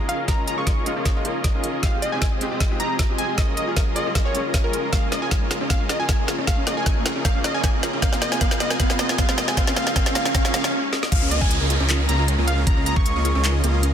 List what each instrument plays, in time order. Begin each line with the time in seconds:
Already playing: ambient pad A#3 D#4 F4 C#5, riser
0.00 supersaw synth C#4 F4 G#4 A#4 D#5, grand piano F4
0.09 digital synth lead F5, closed hi-hat
0.27 grand piano G#3 A#3 D#4 F4, supersaw synth G#4 D#5, digital synth lead A#5, kick, snare, closed hi-hat
0.48 digital synth lead A#5, closed hi-hat
0.57 grand piano G#3 A#3 D#4 F4, supersaw synth C#4 F4 G#4 A#4 D#5, digital synth lead C#6
0.67 kick, snare, closed hi-hat
0.77 supersaw synth C#4 F4 G#4 A#4 D#5
0.85 grand piano G#3 A#3 D#4 F4, closed hi-hat
0.96 supersaw synth C#4 F4 G#4 A#4 D#5
1.05 kick, snare, closed hi-hat
1.15 grand piano G#3 A#3 D#4 F4
1.25 supersaw synth C#4 F4 G#4 A#4 D#5, closed hi-hat
1.44 kick, snare, closed hi-hat
1.53 grand piano G#3 A#3 D#4 F4, supersaw synth C#4 F4 G#4 A#4 D#5
1.64 closed hi-hat
1.82 grand piano G#3 C4 D#4 G4, ambient pad G#3 G4 D#5, digital synth lead F5, kick, snare, closed hi-hat
2.02 digital synth lead D#5, closed hi-hat
2.12 grand piano G#3 C4 D#4 G4, supersaw synth C4 F4 G4 G#4 D#5, digital synth lead G#5
2.22 digital synth lead G#5, kick, snare, closed hi-hat
2.32 supersaw synth C4 F4 G4 G#4 D#5
2.40 grand piano G#3 C4 D#4 G4, closed hi-hat
2.51 supersaw synth C4 F4 G4 G#4 D#5
2.60 kick, snare, closed hi-hat
2.70 grand piano G#3 C4 D#4 G4
2.80 supersaw synth C4 F4 G4 G#4 D#5, digital synth lead A#5, closed hi-hat
2.99 kick, snare, closed hi-hat
3.08 grand piano G#3 C4 D#4 G4, supersaw synth C4 F4 G4 G#4 D#5
3.18 digital synth lead G#5, closed hi-hat
3.37 ambient pad G#3 D#4 C#5, grand piano A#3 C#4 F4 G#4, digital synth lead D#5, kick, snare, closed hi-hat
3.57 digital synth lead D#5, closed hi-hat
3.66 grand piano A#3 C#4 F4 G#4, supersaw synth C#4 F4 G#4 A#4 D#5
3.76 kick, snare, closed hi-hat
3.87 supersaw synth C#4 F4 G#4 A#4 D#5
3.95 grand piano A#3 C#4 F4 G#4, digital synth lead D#5, closed hi-hat
4.06 supersaw synth C#4 F4 G#4 A#4 D#5
4.15 kick, snare, closed hi-hat
4.24 grand piano A#3 C#4 F4 G#4, digital synth lead C#5
4.34 supersaw synth C#4 F4 G#4 A#4 D#5, closed hi-hat
4.54 kick, snare, closed hi-hat
4.63 grand piano A#3 C#4 F4 G#4, supersaw synth C#4 F4 G#4 A#4 D#5, digital synth lead A#4
4.73 closed hi-hat
4.92 synth arpeggio sound A#3, ambient pad A#3, supersaw synth C#4 F4 G#4 A#4 D#5, digital synth lead F5, kick, snare, closed hi-hat
5.03 synth arpeggio sound C#4
5.12 synth arpeggio sound A#3, digital synth lead D#5, snare, closed hi-hat
5.22 supersaw synth C#4 F4 G#4 A#4 D#5, synth arpeggio sound F4, digital synth lead G#5
5.31 kick, snare, closed hi-hat
5.41 synth arpeggio sound A#3, supersaw synth C#4 F4 G#4 A#4 D#5
5.51 synth arpeggio sound F4, snare, closed hi-hat
5.61 supersaw synth C#4 F4 G#4 A#4 D#5, synth arpeggio sound C#4
5.70 synth arpeggio sound A#3, digital synth lead F5, kick, snare, closed hi-hat
5.80 synth arpeggio sound C#4
5.89 synth arpeggio sound A#3, digital synth lead D#5, snare, closed hi-hat
6.00 supersaw synth C#4 F4 G#4 A#4 D#5, synth arpeggio sound F4, digital synth lead G#5
6.09 digital synth lead G#5, kick, snare, closed hi-hat
6.19 synth arpeggio sound A#3, supersaw synth C#4 F4 G#4 A#4 D#5
6.28 synth arpeggio sound F4, snare, closed hi-hat
6.38 supersaw synth C#4 F4 G#4 A#4 D#5, synth arpeggio sound C#4
6.47 synth arpeggio sound A#3, supersaw synth C#4, digital synth lead F5, kick, snare, closed hi-hat
6.58 synth arpeggio sound C#4
6.67 synth arpeggio sound A#3, digital synth lead D#5, snare, closed hi-hat
6.77 supersaw synth C#4 F4 G#4 A#4 D#5, synth arpeggio sound F4, digital synth lead G#5
6.86 kick, snare, closed hi-hat
6.96 synth arpeggio sound A#3, supersaw synth C#4 F4 G#4 A#4 D#5
7.06 synth arpeggio sound F4, snare, closed hi-hat
7.16 supersaw synth C#4 F4 G#4 A#4 D#5, synth arpeggio sound C#4
7.25 synth arpeggio sound A#3, supersaw synth C#4 F4 G#4 A#4 D#5, digital synth lead F5, kick, snare, closed hi-hat
7.35 synth arpeggio sound C#4
7.44 synth arpeggio sound A#3, digital synth lead D#5, snare, closed hi-hat
7.54 supersaw synth C#4 F4 G#4 A#4 D#5, synth arpeggio sound F4, digital synth lead G#5
7.64 kick, snare, closed hi-hat
7.74 synth arpeggio sound A#3, supersaw synth C#4 F4 G#4 A#4 D#5
7.83 synth arpeggio sound F4, snare, closed hi-hat
7.93 supersaw synth C#4 F4 G#4 A#4 D#5, synth arpeggio sound C#4
8.02 ambient pad G#3 F4 G4 D#5, synth arpeggio sound A#3, digital synth lead F5, kick, snare, closed hi-hat
8.13 synth arpeggio sound C4, snare
8.22 synth arpeggio sound A#3, digital synth lead D#5, snare, closed hi-hat
8.32 supersaw synth C4 F4 G#4 A#4 D#5, synth arpeggio sound F4, digital synth lead G#5, snare
8.41 synth arpeggio sound A#3, supersaw synth C4 F4 G#4 A#4 D#5, digital synth lead F5, kick, snare, closed hi-hat
8.51 synth arpeggio sound C4, snare
8.60 synth arpeggio sound A#3, digital synth lead D#5, snare, closed hi-hat
8.70 supersaw synth C4 F4 G#4 A#4 D#5, synth arpeggio sound F4, digital synth lead G#5, snare
8.79 synth arpeggio sound A#3, supersaw synth C4 G#4 D#5, digital synth lead F5, kick, snare, closed hi-hat
8.90 synth arpeggio sound C4, snare
8.99 synth arpeggio sound A#3, digital synth lead D#5, snare, closed hi-hat
9.09 supersaw synth C4 F4 G#4 A#4 D#5, synth arpeggio sound F4, digital synth lead G#5, snare
9.18 synth arpeggio sound A#3, supersaw synth F4 G#4 A#4 D#5, digital synth lead F5, kick, snare, closed hi-hat
9.29 synth arpeggio sound C4, snare
9.38 synth arpeggio sound A#3, digital synth lead D#5, snare, closed hi-hat
9.48 supersaw synth C4 F4 G#4 A#4 D#5, synth arpeggio sound F4, digital synth lead G#5, snare
9.57 synth arpeggio sound A#3, supersaw synth C#4 F4 G#4 A#4 D#5, ambient pad D#4 F4 C#5, digital synth lead F5, kick, snare, closed hi-hat
9.67 synth arpeggio sound C#4, snare
9.76 synth arpeggio sound A#3, supersaw synth C#4 F4 G#4 A#4 D#5, digital synth lead F5, snare, closed hi-hat
9.87 synth arpeggio sound C#4, snare
9.96 synth arpeggio sound A#3, supersaw synth C#4 F4 G#4 D#5, digital synth lead F5, kick, snare, closed hi-hat
10.06 synth arpeggio sound C#4, snare
10.15 synth arpeggio sound A#3, supersaw synth C#4 F4 G#4 A#4 D#5, digital synth lead F5, snare, closed hi-hat
10.25 synth arpeggio sound C#4, snare
10.34 synth arpeggio sound A#3, supersaw synth C#4 F4 G#4 A#4, digital synth lead F5, kick, snare, closed hi-hat
10.45 synth arpeggio sound C#4, snare
10.54 synth arpeggio sound A#3, supersaw synth C#4 F4 G#4 A#4 D#5, digital synth lead F5, snare, closed hi-hat
10.64 synth arpeggio sound C#4, snare
10.93 snare
11.03 snare
11.12 detuned saw bass C#2, synth arpeggio sound A#3, supersaw synth C#4 F4 G#4 A#4 D#5, digital synth lead F5, kick, closed hi-hat, crash, downlifter
11.22 synth arpeggio sound C#4
11.31 synth arpeggio sound A#3, digital synth lead D#5, closed hi-hat
11.41 detuned saw bass C#2, supersaw synth C#4 F4 A#4, synth arpeggio sound F4, digital synth lead G#5, kick
11.50 digital synth lead G#5, closed hi-hat
11.61 detuned saw bass C#2, synth arpeggio sound A#3, supersaw synth C#4 F4 G#4 A#4 D#5
11.70 synth arpeggio sound F4, closed hi-hat
11.80 detuned saw bass C#2, supersaw synth C#4 F4 G#4 A#4 D#5, synth arpeggio sound C#4
11.89 synth arpeggio sound D#4, clap, closed hi-hat
12.09 detuned saw bass C#2, synth arpeggio sound A#3, supersaw synth C#4 F4 G#4 A#4 D#5, digital synth lead A#5, closed hi-hat
12.19 synth arpeggio sound F4
12.28 synth arpeggio sound C#4, closed hi-hat
12.38 detuned saw bass C#2, synth arpeggio sound A#3, supersaw synth C#4 F4 G#4 A#4 D#5
12.47 digital synth lead F5, closed hi-hat
12.58 synth arpeggio sound C#4
12.67 detuned saw bass C#2, synth arpeggio sound A#3, digital synth lead A#5, kick, closed hi-hat
12.77 synth arpeggio sound C#4
12.86 synth arpeggio sound A#3, digital synth lead A#5, closed hi-hat
12.96 detuned saw bass C#2, supersaw synth C#4 F4 G#4 A#4 D#5, synth arpeggio sound F4, digital synth lead C#6, kick
13.06 closed hi-hat
13.16 detuned saw bass C#2, synth arpeggio sound A#3, supersaw synth C#4 F4 G#4 A#4 D#5
13.25 synth arpeggio sound F4, closed hi-hat
13.35 detuned saw bass C#2, supersaw synth C#4 F4 G#4 A#4 D#5, synth arpeggio sound C#4
13.44 synth arpeggio sound D#4, clap, closed hi-hat
13.63 detuned saw bass C#2, synth arpeggio sound A#3, supersaw synth C#4 F4 G#4 A#4 D#5, closed hi-hat
13.74 synth arpeggio sound F4
13.83 synth arpeggio sound C#4, closed hi-hat